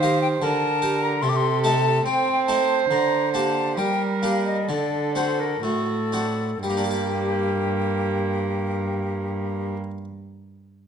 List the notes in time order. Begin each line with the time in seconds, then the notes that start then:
Already playing: D#3 C5
0.01 G4 A#4 F5
0.22 G5
0.41 D3 A#4 A5
0.82 G4 A#4
1.02 A#5
1.22 C3 A4 C6
1.29 D6
1.37 C6
1.63 A3 D#4 A4 A5
2.05 C4 C5 G5
2.46 A3 D#4 A4 A5
2.89 D3 A#5
3.33 A#3 D4 G4 A5
3.76 G3 A#4 G5
4.22 A#3 D4 G4 F5
4.45 D#5
4.67 D3 A4 D5
5.15 C4 D4 F#4 C5
5.40 A#4
5.63 A2 F#4 A4
6.12 C4 D4 F#4
6.62 G2 G3 A#3 G4
6.70 A#3
6.77 D4
6.84 G4
6.91 D5